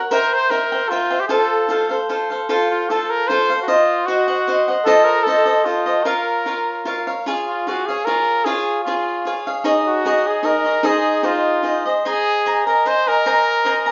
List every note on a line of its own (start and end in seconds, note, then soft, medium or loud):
0.00 0.12 C#5 soft
0.00 0.11 F#5 soft
0.11 0.49 A#4 medium
0.11 0.35 A#4 medium
0.11 0.51 C5 medium
0.11 0.50 E5 medium
0.11 0.50 G5 medium
0.34 0.52 C5 medium
0.50 0.70 A#4 medium
0.50 0.91 A#4 medium
0.50 0.71 C5 soft
0.50 0.71 E5 medium
0.50 0.71 G5 medium
0.72 0.90 C5 soft
0.72 0.90 E5 soft
0.72 0.90 G5 soft
0.90 1.21 F4 medium
0.90 1.10 A#4 medium
0.90 1.11 C5 medium
0.90 1.10 E5 medium
0.90 1.09 G5 medium
1.10 1.29 C5 soft
1.10 1.29 E5 soft
1.10 1.29 G5 soft
1.20 1.27 G4 medium
1.28 1.67 F4 medium
1.28 1.97 A4 medium
1.28 1.68 A4 medium
1.28 1.70 C5 medium
1.28 1.69 F5 medium
1.69 1.89 F4 medium
1.69 1.90 A4 medium
1.69 1.89 C5 medium
1.69 1.88 F5 medium
1.89 2.09 A4 soft
1.89 2.08 C5 soft
1.89 2.09 F5 soft
2.09 2.30 F4 medium
2.09 2.30 A4 medium
2.09 2.30 C5 medium
2.09 2.29 F5 medium
2.30 2.48 A4 soft
2.30 2.49 C5 soft
2.30 2.49 F5 soft
2.49 2.89 F4 medium
2.49 2.69 F4 medium
2.49 2.89 A4 medium
2.49 2.90 C5 medium
2.49 2.90 F5 medium
2.71 2.92 F4 medium
2.90 3.28 F4 soft
2.90 3.12 A4 medium
2.90 3.29 A4 medium
2.90 3.30 C5 medium
2.90 3.30 F5 medium
3.10 3.29 A#4 medium
3.28 3.50 F4 medium
3.28 3.50 A4 medium
3.28 3.61 C5 medium
3.28 3.49 C5 medium
3.28 3.48 F5 medium
3.50 3.70 A4 soft
3.50 3.67 C5 soft
3.50 3.67 F5 soft
3.62 3.70 F#4 medium
3.68 4.07 F4 medium
3.68 4.07 C5 medium
3.68 4.08 D#5 medium
4.06 4.67 F#4 medium
4.06 4.28 F#4 medium
4.06 4.28 C5 medium
4.06 4.27 D#5 medium
4.06 4.27 F#5 medium
4.28 4.47 C5 soft
4.28 4.47 D#5 soft
4.28 4.47 F#5 medium
4.47 4.68 F#4 medium
4.47 4.68 C5 medium
4.47 4.68 D#5 medium
4.47 4.67 F#5 medium
4.68 4.86 C5 soft
4.68 4.86 D#5 soft
4.68 4.87 F#5 soft
4.85 5.26 F4 medium
4.85 5.06 A4 medium
4.85 5.26 A4 medium
4.85 5.26 C5 medium
4.85 5.26 D#5 medium
5.05 5.25 A#4 medium
5.23 5.47 F4 medium
5.23 5.67 A4 medium
5.23 5.46 A4 medium
5.28 5.45 C5 medium
5.28 5.44 D#5 medium
5.46 5.65 A4 soft
5.46 5.65 C5 soft
5.46 5.65 D#5 soft
5.65 6.05 F4 medium
5.65 5.86 F4 soft
5.65 5.86 A4 soft
5.65 5.86 C5 medium
5.65 5.85 D#5 medium
5.86 6.06 A4 soft
5.86 6.05 C5 soft
5.86 6.05 D#5 soft
6.03 6.46 F4 medium
6.03 7.06 A#4 medium
6.03 6.45 A#4 medium
6.03 6.46 C#5 medium
6.03 6.47 F5 medium
6.46 6.85 F4 medium
6.46 6.85 A#4 medium
6.46 6.86 C#5 soft
6.46 6.87 F5 medium
6.85 7.06 F4 medium
6.85 7.07 A#4 medium
6.85 7.06 C#5 medium
6.85 7.06 F5 medium
7.07 7.27 A#4 soft
7.07 7.26 C#5 soft
7.07 7.26 F5 soft
7.26 7.66 F4 medium
7.26 7.68 G#4 medium
7.26 7.68 C#5 medium
7.26 7.67 F5 medium
7.47 7.70 F4 medium
7.67 7.88 F4 medium
7.67 7.88 F#4 medium
7.67 7.88 G#4 medium
7.67 7.89 C#5 soft
7.67 7.87 F5 medium
7.86 8.07 G#4 medium
7.86 8.06 G#4 soft
7.86 8.07 C#5 soft
7.86 8.07 F5 soft
8.05 8.45 F4 medium
8.05 8.45 G#4 medium
8.05 8.46 A#4 medium
8.05 8.46 C#5 medium
8.05 8.45 F5 medium
8.45 8.85 F4 medium
8.45 8.83 G#4 medium
8.45 8.87 G#4 medium
8.45 8.86 C#5 medium
8.45 8.86 F5 medium
8.84 9.41 F4 medium
8.84 9.24 F4 medium
8.84 9.26 G#4 medium
8.88 9.26 C#5 medium
8.88 9.26 F5 medium
9.25 9.46 F4 soft
9.25 9.46 G#4 medium
9.25 9.47 C#5 medium
9.25 9.46 F5 medium
9.47 9.64 G#4 soft
9.47 9.64 C#5 soft
9.47 9.65 F5 medium
9.64 10.05 D#4 medium
9.64 10.05 G#4 medium
9.64 10.05 C#5 medium
9.64 10.06 D#5 loud
9.87 10.29 F#4 medium
10.05 10.42 D#4 medium
10.05 10.43 G#4 medium
10.05 10.43 C#5 medium
10.05 10.44 D#5 medium
10.27 10.47 G#4 medium
10.43 10.64 D#4 medium
10.43 10.64 G#4 medium
10.43 10.87 A#4 medium
10.43 10.64 C#5 medium
10.43 10.63 D#5 medium
10.64 10.82 G#4 soft
10.64 10.84 C#5 soft
10.64 10.83 D#5 soft
10.83 11.23 D#4 medium
10.83 11.23 G#4 medium
10.83 11.27 G#4 medium
10.83 11.23 C5 medium
10.83 11.24 D#5 medium
11.23 11.62 D#4 medium
11.23 11.87 F4 medium
11.23 11.63 G#4 medium
11.23 11.64 C5 medium
11.23 11.64 D#5 soft
11.63 11.85 D#4 soft
11.63 11.85 G#4 soft
11.63 11.85 C5 medium
11.63 11.84 D#5 soft
11.85 12.05 G#4 soft
11.85 12.04 C5 soft
11.85 12.05 D#5 soft
12.05 12.64 G#4 medium
12.05 12.45 C5 medium
12.05 12.45 D#5 medium
12.05 12.46 G#5 medium
12.05 12.47 A#5 medium
12.46 12.67 C5 soft
12.46 12.67 D#5 medium
12.46 12.66 G#5 medium
12.46 12.65 A#5 medium
12.67 12.89 A#4 medium
12.67 12.85 D#5 soft
12.67 12.85 G#5 soft
12.67 12.86 A#5 soft
12.86 13.07 C5 medium
12.86 13.09 C5 loud
12.86 13.07 D#5 medium
12.86 13.07 G#5 medium
12.86 13.05 A#5 medium
13.07 13.91 A#4 medium
13.07 13.25 D#5 soft
13.07 13.25 G#5 soft
13.07 13.25 A#5 soft
13.26 13.64 C5 medium
13.26 13.64 D#5 medium
13.26 13.66 G#5 medium
13.26 13.66 A#5 medium
13.65 13.86 C5 medium
13.65 13.86 D#5 medium
13.65 13.86 G#5 medium
13.65 13.85 A#5 medium
13.86 13.91 D#5 soft
13.86 13.91 G#5 soft
13.86 13.91 A#5 soft